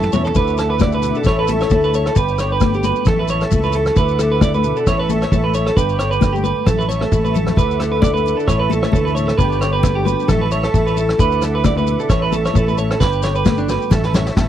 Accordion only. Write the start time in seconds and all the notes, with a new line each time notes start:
Already playing: E5 A5 C#6
0.34 E5 F#5 D6
1.25 A5 C#6
2.14 G5 B5 D6
3.08 E5 A5 C#6
3.95 F#5 D6
4.87 A5 C#6
5.76 G5 B5 D6
6.67 E5 A5 C#6
7.58 F#5 D6
8.51 A5 C#6
9.38 G5 B5 D6
10.29 E5 A5 C#6
11.20 F#5 D6
12.10 A5 C#6
13.02 G5 B5 D6
13.91 E5 A5 C#6